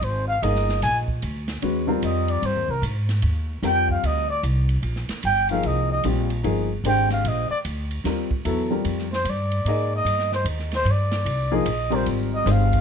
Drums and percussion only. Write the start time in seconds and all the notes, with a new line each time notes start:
0.02 ride
0.43 hi-hat pedal, ride
0.56 snare
0.69 snare
0.82 snare, ride
1.08 kick
1.22 hi-hat pedal, ride
1.48 snare, ride
1.62 ride
2.02 hi-hat pedal, ride
2.28 ride
2.43 ride
2.83 hi-hat pedal, ride
3.09 snare, ride
3.22 ride
3.63 snare, hi-hat pedal, ride
3.89 kick
4.04 ride
4.43 hi-hat pedal, ride
4.69 ride
4.83 ride
4.96 snare
5.09 snare, ride
5.23 hi-hat pedal, ride
5.49 ride
5.63 ride
6.04 hi-hat pedal, ride
6.30 ride
6.44 ride
6.85 hi-hat pedal, ride
7.10 snare, ride
7.25 ride
7.65 hi-hat pedal, ride
7.91 ride
8.05 snare, ride
8.31 kick
8.45 hi-hat pedal, ride
8.85 ride
8.99 snare
9.13 snare
9.25 hi-hat pedal, ride
9.52 ride
9.66 ride
10.06 hi-hat pedal, ride
10.19 snare
10.32 snare
10.46 ride
10.59 snare
10.72 snare, ride
10.86 hi-hat pedal, ride
11.12 snare, ride
11.26 ride
11.66 hi-hat pedal, ride
11.92 ride
12.06 ride
12.47 snare, hi-hat pedal, ride
12.73 kick, ride